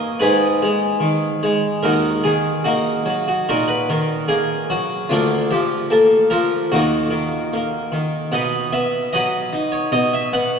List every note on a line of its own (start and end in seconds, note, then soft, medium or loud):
0.00 0.19 A#3 medium
0.00 0.13 D#5 medium
0.20 0.59 G#2 medium
0.20 1.80 D#4 medium
0.20 1.80 G#4 medium
0.20 1.83 B4 medium
0.62 1.04 G#3 soft
1.00 1.44 D#3 medium
1.43 1.84 G#3 soft
1.83 2.23 D#2 medium
1.83 2.21 D#4 medium
1.83 2.22 F#4 medium
1.83 2.24 A#4 medium
2.24 2.67 D#3 soft
2.24 2.64 G#4 medium
2.64 3.22 A#3 medium
2.64 3.22 D#4 medium
2.64 3.25 F#4 medium
3.06 3.48 F#3 medium
3.28 3.47 F#4 medium
3.49 3.91 A#2 medium
3.49 3.67 D#4 medium
3.49 3.67 F#4 medium
3.49 3.68 A#4 loud
3.68 3.87 B4 medium
3.89 4.31 D#3 medium
3.89 4.23 A#4 medium
4.28 4.71 A#3 medium
4.28 4.68 G#4 medium
4.70 5.09 F#3 medium
4.70 5.09 F#4 medium
5.09 5.49 D2 medium
5.09 5.47 A#3 medium
5.09 5.47 D4 medium
5.09 5.49 F4 medium
5.51 5.92 F3 soft
5.51 5.84 G4 medium
5.90 6.33 A#3 medium
5.90 6.25 A4 loud
6.30 6.71 F3 medium
6.30 6.65 A#4 loud
6.72 7.10 D#2 medium
6.72 7.52 A#3 medium
6.72 8.29 D#4 medium
6.72 8.08 F#4 loud
7.10 7.53 D#3 medium
7.53 7.94 A#3 medium
7.92 8.32 D#3 medium
8.32 8.71 B2 medium
8.32 8.70 B4 medium
8.32 8.70 D#5 medium
8.32 8.66 F#5 loud
8.72 9.15 B3 medium
8.72 9.13 E5 loud
9.13 9.55 F#3 medium
9.13 9.70 F#4 medium
9.13 9.70 B4 medium
9.13 9.73 D#5 loud
9.53 9.93 D#4 medium
9.72 9.92 C#5 medium
9.92 10.31 B2 medium
9.92 10.12 D#5 loud
10.13 10.33 E5 loud
10.33 10.59 B3 medium
10.33 10.59 F#5 loud